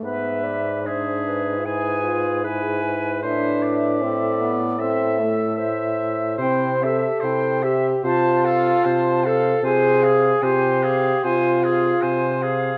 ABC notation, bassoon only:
X:1
M:4/4
L:1/8
Q:1/4=75
K:Am
V:1 name="Bassoon" clef=bass
^G,,8 | A,,8 | [K:Flyd] C,2 C,2 C,2 C,2 | C,2 C,2 C,2 C,2 |]